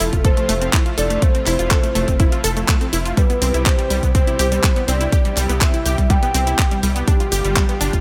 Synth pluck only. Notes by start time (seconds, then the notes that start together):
0.00 E4
0.13 F4
0.24 A4
0.37 A3
0.49 A3
0.61 C4
0.73 E4
0.86 F4
0.98 A4
1.10 A3
1.22 A3
1.35 C4
1.46 E4
1.59 F4
1.71 A4
1.83 A3
1.95 A3
2.08 C4
2.20 E4
2.32 F4
2.44 A4
2.57 A3
2.69 A3
2.81 C4
2.93 E4
3.05 F4
3.17 G3
3.30 B3
3.42 C4
3.54 E4
3.66 G4
3.79 G3
3.90 G3
4.03 B3
4.15 C4
4.28 E4
4.39 G4
4.52 G3
4.64 G3
4.76 B3
4.88 C4
5.01 E4
5.12 G4
5.25 G3
5.37 G3
5.50 B3
5.61 C4
5.74 E4
5.86 G4
5.98 G3
6.10 G3
6.23 B3
6.34 C4
6.47 E4
6.59 G4
6.71 G3
6.83 G3
6.96 B3
7.08 D4
7.20 F4
7.32 G4
7.45 G3
7.56 G3
7.69 B3
7.81 D4
7.93 F4